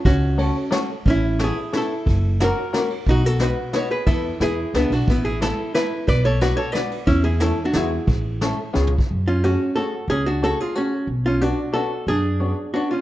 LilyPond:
<<
  \new Staff \with { instrumentName = "Hollow-body jazz guitar" } { \time 3/4 \key fis \minor \tempo 4 = 180 <cis' fis'>2 r4 | \key a \major <cis' e'>4 <e' gis'>4 <e' a'>4~ | <e' a'>4 <fis' ais'>4. r8 | <dis' fis'>8 <fis' a'>8 <fis' b'>4 <fis' cis''>8 <gis' b'>8 |
<e' a'>4 <e' gis'>4 <b d'>8 <d' fis'>8 | <b e'>8 <e' gis'>8 <e' a'>4 <e' b'>4 | <b' d''>8 <a' cis''>8 <fis' b'>8 <a' cis''>8 <b' d''>4 | <cis' e'>8 <e' gis'>8 <e' a'>8. <d' fis'>16 <e' gis'>4~ |
<e' gis'>2 r4 | \key fis \minor r8 <cis' eis'>8 <cis' fis'>4 <fis' a'>4 | <cis' gis'>8 <d' fis'>8 <fis' a'>8 <eis' gis'>8 <cis' fis'>4 | r8 <cis' eis'>8 <d' fis'>4 <fis' a'>4 |
<d' gis'>2 <d' fis'>8 <cis' eis'>8 | }
  \new Staff \with { instrumentName = "Five-string banjo" } { \time 3/4 \key fis \minor r4 <a cis' fis' a' cis''>8 r8 <a cis' fis' a' cis''>8 r8 | \key a \major r4 <b cis' e' a'>8 r8 <b cis' e' a'>8 r8 | r4 <ais cis' fis' ais'>8 r8 <ais cis' fis' ais'>8 r8 | r4 <b dis' fis' b'>8 r8 <b dis' fis' b'>8 r8 |
<b e' a' b'>4 <b e' gis' b'>8 r8 <b e' gis' b'>8 r8 | r4 <b e' a' b'>8 r8 <b e' a' b'>8 r8 | r4 <b d' fis' b'>8 r8 <b d' fis' b'>8 r8 | r4 <a cis' e' a'>8 r8 <gis b e' fis'>8 r8 |
r4 <a cis' e' a'>8 r8 <b cis' eis' gis'>8 r8 | \key fis \minor r4 <a cis' fis' gis'>8 r8 <a cis' fis' gis'>8 r8 | r4 <a cis' fis' gis'>8 r8 <a cis' fis' gis'>8 r8 | r4 <b cis' d' fis'>8 r8 <b cis' d' fis'>8 r8 |
r4 <b cis' d' fis'>8 r8 <b cis' d' fis'>8 r8 | }
  \new Staff \with { instrumentName = "Upright bass" } { \clef bass \time 3/4 \key fis \minor cis,2 r4 | \key a \major a,,2 r4 | fis,,2 r4 | b,,2 r4 |
e,4 e,4 cis,8 b,,8 | a,,2 r4 | b,,2 r4 | e,2 e,4 |
a,,2 cis,4 | \key fis \minor fis,2 r4 | cis,2 r4 | b,,2 r4 |
fis,2 r4 | }
  \new DrumStaff \with { instrumentName = "Drums" } \drummode { \time 3/4 <bd cymr>4 cymr4 <cymr sn>4 | <bd cymr>4 <cymr sn>4 <cymr sn>4 | <bd cymr>4 <cymr sn>4 <cymr sn>8 cymr8 | <bd cymr>4 <cymr sn>4 <cymr sn>4 |
<bd cymr>4 <cymr sn>4 <cymr sn>8 cymr8 | <bd cymr>4 <cymr sn>4 <cymr sn>4 | <bd cymr>4 <cymr sn>4 <cymr sn>8 cymr8 | <bd cymr>4 <cymr sn>4 <cymr sn>4 |
<bd cymr>4 <cymr sn>4 \tuplet 3/2 { sn8 toml8 bd8 } | r4 r4 r4 | r4 r4 r4 | r4 r4 r4 |
r4 r4 r4 | }
>>